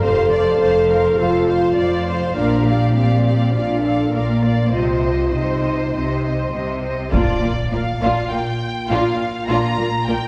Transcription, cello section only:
0.01 F2
0.60 F2
1.18 F2
1.77 F2
2.36 A#2
2.94 A#2
3.53 A#2
4.13 A#2
4.73 C3
5.33 C3
5.93 C3
6.53 C3
7.13 A#2
7.41 A#2
7.72 A#2
8.01 A#2
8.31 A#2
8.89 A#2
9.48 A#2
9.78 A#2
10.07 A#2

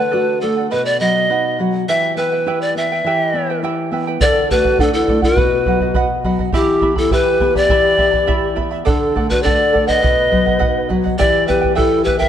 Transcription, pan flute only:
Already playing: B4
0.41 A4
0.71 B4
0.85 D5
1.00 D#5
1.89 E5
2.17 B4
2.61 D5
2.77 E5
4.21 D5
4.51 B4
4.81 A4
4.93 A4
5.24 B4
6.55 G4
6.98 A4
7.13 B4
7.57 D5
8.86 A4
9.30 B4
9.43 D5
9.88 D#5
11.18 D5
11.48 B4
11.75 A4
12.04 B4
12.19 E5

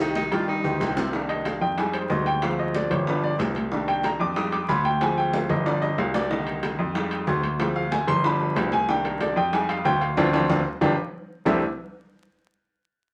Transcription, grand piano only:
Already playing: C2
0.31 G2
0.64 D2
0.80 C2
1.61 F2
2.10 D2
2.90 G1
3.39 C2
4.20 F2
4.69 D2
5.50 G1
5.98 C2
6.79 F2
7.27 D2
8.08 G1
8.56 C2
9.36 F2
9.85 D2
10.17 D2
10.33 D2
10.50 D2
10.82 G1
11.46 C2

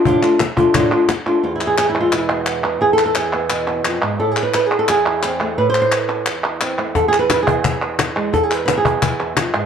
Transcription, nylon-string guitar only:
0.05 A2 D3 A3 D4 F4
0.22 A3 D4 F4
0.40 muted nylon-string guitar stroke
0.57 A3 D4 F4
0.74 A2 D3 A3 D4 F4
0.91 A3 D4 F4
1.09 muted nylon-string guitar stroke
1.26 A3 D4 F4
1.43 E2 F4
1.56 E4
1.67 G#4
1.78 G#4
1.89 E4
1.96 G#3
2.01 F4
2.12 B2 E4
2.30 B3
2.64 E3
2.81 E2 G#4
2.93 A4
3.06 A4
3.17 G#4
3.34 B3
3.50 B2
3.68 B3
3.85 F2
4.02 G#2
4.20 A2 A4
4.31 G#4
4.43 B4
4.54 B4
4.66 G#4
4.79 A4
4.88 E2 G#4
5.07 E4
5.24 C4
5.41 A3
5.58 A2 B4
5.70 C5
5.82 C5
5.93 B4
6.27 E2
6.62 C4
6.78 A3
6.96 E2 A4
7.08 G#4
7.19 B4
7.31 B4
7.43 G#4
7.49 B3
7.65 E2
8.16 G#3
8.33 E2 A4
8.43 G#4
8.54 B4
8.66 B4
8.78 G#4
8.86 B3
9.02 E2
9.20 E4
9.37 F2
9.54 G#2

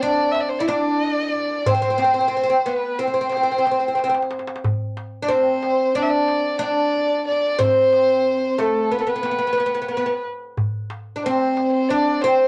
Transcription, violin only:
0.01 D5
0.32 E5
0.40 D5
0.49 C5
0.59 D5
0.68 D5
1.68 C5
2.65 B4
2.98 C5
5.24 D5
5.31 C5
5.96 D5
6.02 E5
6.10 D5
6.61 D5
7.28 D5
7.55 D5
7.60 C5
8.59 A4
8.92 B4
9.01 A4
9.08 B4
9.92 B4
11.25 C5
11.73 C5
11.89 D5
12.21 C5

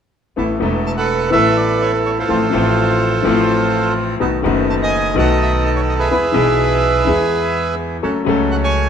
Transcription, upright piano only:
0.36 A1 A2 E3 A3 B3 A4
0.59 E1 E2 E3 A3 B3 A4
1.30 A1 A2 E3 A3 B3
1.35 A4
2.28 A1 A2 F3 A3 C4 A4
2.50 A1 A2 F3 A3 C4 A4
3.23 A1 A2 F3 A3 C4 A4
4.20 B1 B2 D#3 A3 B3 F#4
4.42 F#1 F#2 D#3 A3 B3 F#4
5.14 B1 B2 D#3 A3 B3 F#4
6.11 E2 E3 G#3 B3 G#4
6.32 B1 B2 E3 G#3 B3
6.36 G#4
7.06 E2 E3 G#3 B3 G#4
8.02 F#2 F#3 A3 C#4 A4
8.25 C#2 C#3 F#3 A3 C#4
8.29 A4

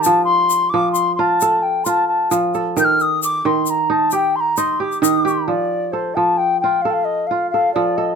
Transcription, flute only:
0.02 A5
0.25 C6
0.70 D6
0.92 C6
1.16 C6
1.20 A5
1.62 G5
1.84 C6
1.89 A5
2.08 A5
2.80 G6
2.85 F6
3.02 D#6
3.24 D6
3.46 C6
3.70 A#5
3.91 A5
4.14 G5
4.36 C6
4.40 A#5
4.58 C6
4.80 D6
5.02 D#6
5.47 D5
5.92 C5
6.15 A5
6.38 G5
6.60 G5
6.82 F5
6.90 F5 G5
7.05 D#5
7.27 F5
7.50 F5
7.74 D5
7.97 D#5

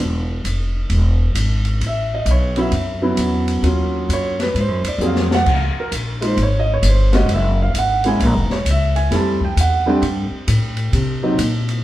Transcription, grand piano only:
1.87 E5
2.14 D#5
2.31 C#5
2.57 F#3 B3 C#4 E4 E5
3.02 F#3 B3 C#4 E4
3.63 F#3 A#3 C#4 F4
4.13 C#5
4.42 B4
4.60 C5
4.88 D5
5.00 F#3 A#3 C4 G#4
5.06 F5
5.35 F#5
5.54 F5
5.80 A#4
6.21 G#3 A#3 D#4 F4
6.27 C5
6.43 C#5
6.59 D#5
6.74 C#5
6.89 C5
7.13 G#3 A#3 C#4 F#4 D#5
7.33 E5
7.62 F5
7.79 F#5
8.05 G#3 A#3 C#4 E4 G#5
8.26 A#5
8.52 C#5
8.70 E5
8.96 G#5
9.11 G3 A3 C4 E4
9.15 A5
9.45 G5
9.61 F#5
9.86 G3 A3 C4 D4 G5
11.22 F#3 A#3 C4 D#4

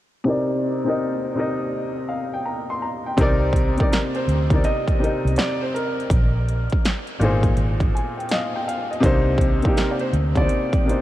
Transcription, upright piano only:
0.24 C3 C4 D#4 A#4
0.29 D5
0.84 C3 C4 D#4 A#4
0.90 D#5
1.35 C3 C4 D#4 A#4
1.40 D#5
2.09 F5
2.34 G5
2.46 A#5
2.70 C6
2.82 A#5
3.06 G5
3.17 C3 C4 D#4
3.21 A#4 D5
3.77 C3 C4 D#4 A#4
3.82 D5
4.50 C3 C4 D#4 A#4
4.55 D5
4.99 C3 C4 D#4 A#4
5.04 D#5
7.19 A#2 A#3 D#4
7.23 G#4 C5
7.95 G#5
8.17 G5
8.31 D#5 F5
8.55 G5
8.68 F5
8.91 D#5
9.00 C3 A#3 D4 D#4
9.06 C5
9.62 C3 A#3 D4 D#4
9.67 G4
10.36 C3 A#3 D5
10.40 D#4 C5
10.85 C3 A#3 D4 D#4
10.90 C5

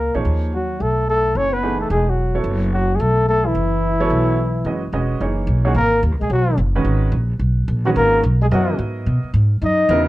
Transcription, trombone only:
Already playing: A#3
0.54 F#3
0.80 A3
1.08 A3
1.36 C#4
1.53 B3
1.80 A3
1.93 G#3
2.09 F#3
2.73 F#3
2.95 G#3
3.00 A3
3.29 A3
3.46 E3
5.64 F#3
5.75 A#3
6.20 G#3
6.31 F#3
7.86 F#3
7.96 A#3
8.41 G#3
8.53 F#3
9.63 D#4

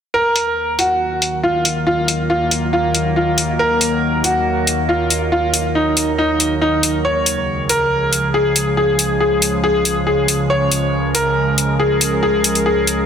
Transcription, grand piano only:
0.14 A#4
0.79 F#4
1.43 F4
1.87 F4
2.30 F4
2.73 F4
3.16 F4
3.59 A#4
4.24 F#4
4.89 F4
5.32 F4
5.75 D#4
6.18 D#4
6.61 D#4
7.05 C#5
7.69 A#4
8.34 G#4
8.77 G#4
9.20 G#4
9.64 G#4
10.07 G#4
10.50 C#5
11.15 A#4
11.79 G#4
12.23 G#4
12.66 G#4

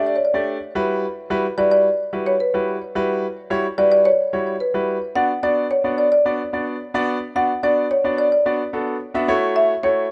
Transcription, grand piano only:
Already playing: A3 D4 G4 D5
0.34 A3 D4 G4 D5
0.75 G3 E4 F#4 B4
1.30 G3 E4 F#4 B4
1.58 G3 E4 F#4 B4
2.13 G3 E4 F#4 B4
2.54 G3 E4 F#4 B4
2.95 G3 E4 F#4 B4
3.50 G3 E4 F#4 C#5
3.78 G3 E4 F#4 B4
4.33 G3 E4 F#4 C#5
4.74 G3 E4 F#4 B4
5.15 B3 D4 F#4 D5
5.43 B3 D4 F#4 D5
5.84 B3 D4 F#4 D5
6.25 B3 D4 F#4 D5
6.53 B3 D4 F#4 D5
6.94 B3 D4 F#4 D5
7.36 B3 D4 F#4 D5
7.63 B3 D4 F#4 D5
8.04 B3 D4 F#4 D5
8.46 B3 D4 F#4 D5
8.73 B3 D4 F#4 A4
9.14 B3 D4 F#4 E5
9.28 A3 E4 F#4 C#5
9.83 A3 E4 F#4 C#5

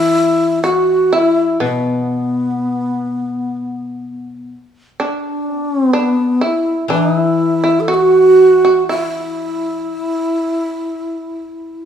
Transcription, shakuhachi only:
Already playing: E4
0.64 F#4
1.14 E4
1.64 B3
5.01 D4
5.81 C4
5.93 B3
6.43 E4
6.90 D4
7.16 E4
7.80 A4
7.89 A4
7.94 F#4
8.89 E4

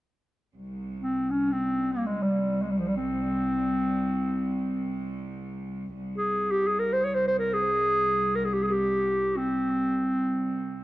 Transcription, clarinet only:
1.00 C4
1.30 C#4
1.52 C4
1.92 A#3
2.06 G#3
2.22 G3
2.62 G#3
2.71 G3
2.79 F3
2.88 G3
2.96 C4
6.18 G#4
6.52 G4
6.68 G#4
6.80 A#4
6.93 C5
7.04 C#5
7.15 C5
7.28 C5
7.39 A#4
7.53 G#4
8.35 A#4
8.45 G#4
8.54 G4
8.63 G#4
8.70 G4
9.37 C4

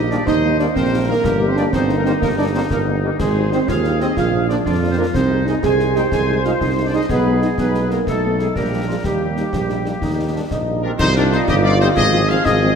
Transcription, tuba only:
Already playing: A#1
0.27 D#2
0.76 A#1
1.24 G1
1.73 G1
2.22 G1
2.71 G1
3.19 G#1
3.68 D#2
4.17 A#1
4.66 F2
5.14 C2
5.63 C2
6.12 C2
6.61 C2
7.10 B1
7.58 B1
8.07 B1
8.55 A#1
9.04 D#2
9.53 A#1
10.02 D#2
10.51 A#1
10.99 C2
11.48 G1
11.96 G#1
12.45 G#1

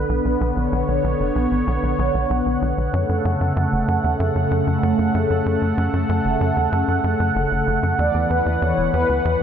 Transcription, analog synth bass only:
0.09 B1
0.25 B1
0.41 B1
0.57 B1
0.72 B1
0.88 B1
1.04 B1
1.20 F#1
1.36 B1
1.51 A1
1.67 B1
1.83 B1
1.99 B1
2.15 B1
2.30 B1
2.46 B1
2.62 B1
2.78 B1
2.93 F#2
3.09 F#2
3.25 F#2
3.41 F#2
3.57 F#2
3.72 F#1
3.88 F#2
4.04 E2
4.20 F#2
4.36 F#2
4.51 F#2
4.67 F#2
4.83 F#2
4.99 F#2
5.15 F#2
5.30 F#2
5.46 F#2
5.62 F#2
5.78 F#2
5.93 F#2
6.09 F#2
6.25 F#1
6.41 F#2
6.57 E2
6.72 F#2
6.88 F#2
7.04 F#2
7.20 F#2
7.36 F#1
7.51 F#1
7.67 F#1
7.83 F#2
7.99 E2
8.15 E2
8.30 E2
8.46 E2
8.62 E2
8.78 E1
8.94 E2
9.09 D2
9.25 E2

